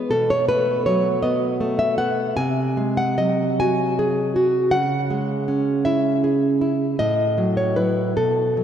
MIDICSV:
0, 0, Header, 1, 2, 480
1, 0, Start_track
1, 0, Tempo, 748130
1, 76, Time_signature, 6, 3, 24, 8
1, 1516, Tempo, 815217
1, 2476, Tempo, 750000
1, 4396, Tempo, 789474
1, 5395, End_track
2, 0, Start_track
2, 0, Title_t, "Nylon-string guitar"
2, 0, Program_c, 0, 24
2, 0, Note_on_c, 0, 56, 53
2, 0, Note_on_c, 0, 59, 47
2, 0, Note_on_c, 0, 68, 57
2, 66, Note_off_c, 0, 68, 0
2, 68, Note_on_c, 0, 69, 95
2, 72, Note_on_c, 0, 47, 60
2, 74, Note_off_c, 0, 56, 0
2, 76, Note_off_c, 0, 59, 0
2, 192, Note_off_c, 0, 69, 0
2, 195, Note_on_c, 0, 73, 83
2, 309, Note_off_c, 0, 73, 0
2, 311, Note_on_c, 0, 71, 84
2, 316, Note_on_c, 0, 57, 47
2, 540, Note_off_c, 0, 71, 0
2, 552, Note_on_c, 0, 73, 80
2, 556, Note_on_c, 0, 54, 48
2, 780, Note_off_c, 0, 73, 0
2, 786, Note_on_c, 0, 75, 75
2, 795, Note_on_c, 0, 59, 50
2, 1022, Note_off_c, 0, 57, 0
2, 1030, Note_on_c, 0, 57, 55
2, 1134, Note_off_c, 0, 75, 0
2, 1148, Note_on_c, 0, 76, 89
2, 1267, Note_off_c, 0, 59, 0
2, 1267, Note_off_c, 0, 76, 0
2, 1270, Note_on_c, 0, 78, 101
2, 1273, Note_off_c, 0, 54, 0
2, 1274, Note_on_c, 0, 59, 55
2, 1488, Note_off_c, 0, 47, 0
2, 1506, Note_off_c, 0, 78, 0
2, 1516, Note_off_c, 0, 57, 0
2, 1518, Note_off_c, 0, 59, 0
2, 1518, Note_on_c, 0, 80, 108
2, 1519, Note_on_c, 0, 48, 67
2, 1757, Note_on_c, 0, 56, 47
2, 1864, Note_off_c, 0, 80, 0
2, 1876, Note_on_c, 0, 78, 85
2, 1996, Note_on_c, 0, 75, 87
2, 1997, Note_off_c, 0, 56, 0
2, 1999, Note_on_c, 0, 54, 51
2, 2002, Note_off_c, 0, 78, 0
2, 2234, Note_off_c, 0, 75, 0
2, 2243, Note_on_c, 0, 80, 95
2, 2250, Note_on_c, 0, 66, 50
2, 2474, Note_on_c, 0, 68, 62
2, 2702, Note_off_c, 0, 66, 0
2, 2710, Note_on_c, 0, 66, 55
2, 2711, Note_off_c, 0, 54, 0
2, 2919, Note_off_c, 0, 80, 0
2, 2923, Note_off_c, 0, 48, 0
2, 2937, Note_on_c, 0, 78, 108
2, 2940, Note_on_c, 0, 49, 62
2, 2946, Note_off_c, 0, 66, 0
2, 2946, Note_off_c, 0, 68, 0
2, 3187, Note_on_c, 0, 56, 45
2, 3428, Note_on_c, 0, 61, 44
2, 3636, Note_off_c, 0, 78, 0
2, 3664, Note_on_c, 0, 76, 90
2, 3670, Note_on_c, 0, 64, 48
2, 3900, Note_off_c, 0, 76, 0
2, 3912, Note_off_c, 0, 56, 0
2, 3914, Note_on_c, 0, 68, 60
2, 4146, Note_off_c, 0, 64, 0
2, 4153, Note_on_c, 0, 64, 54
2, 4155, Note_off_c, 0, 61, 0
2, 4367, Note_off_c, 0, 49, 0
2, 4394, Note_on_c, 0, 75, 110
2, 4396, Note_off_c, 0, 64, 0
2, 4397, Note_off_c, 0, 68, 0
2, 4397, Note_on_c, 0, 45, 67
2, 4630, Note_on_c, 0, 54, 45
2, 4739, Note_off_c, 0, 75, 0
2, 4747, Note_on_c, 0, 73, 74
2, 4861, Note_off_c, 0, 54, 0
2, 4864, Note_on_c, 0, 71, 77
2, 4868, Note_on_c, 0, 54, 46
2, 4870, Note_off_c, 0, 73, 0
2, 4872, Note_on_c, 0, 64, 48
2, 5086, Note_off_c, 0, 54, 0
2, 5088, Note_off_c, 0, 64, 0
2, 5092, Note_off_c, 0, 45, 0
2, 5098, Note_off_c, 0, 71, 0
2, 5110, Note_on_c, 0, 69, 82
2, 5111, Note_on_c, 0, 47, 57
2, 5355, Note_on_c, 0, 54, 42
2, 5395, Note_off_c, 0, 47, 0
2, 5395, Note_off_c, 0, 54, 0
2, 5395, Note_off_c, 0, 69, 0
2, 5395, End_track
0, 0, End_of_file